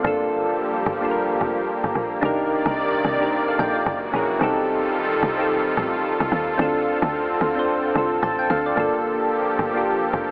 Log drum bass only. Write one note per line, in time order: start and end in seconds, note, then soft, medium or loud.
0.04 0.82 G1 loud
0.86 1.37 G1 loud
1.41 1.66 F1 loud
1.84 1.94 G1 medium
1.95 2.21 A#1 medium
2.23 2.62 C2 loud
2.66 3.02 C2 loud
3.04 3.55 C2 medium
3.59 3.84 A#1 medium
3.86 4.11 F#1 loud
4.14 4.39 A#1 medium
4.41 5.19 C2 loud
5.23 5.73 C2 loud
5.77 6.02 A1 loud
6.20 6.31 C2 medium
6.32 6.57 D#2 medium
6.59 6.99 D2 loud
7.02 7.38 D2 loud
7.41 7.91 D2 medium
7.95 8.21 C2 loud
8.23 8.48 A1 loud
8.50 8.75 D2 loud
8.77 9.55 G1 loud
9.59 10.09 G1 loud
10.13 10.31 F1 loud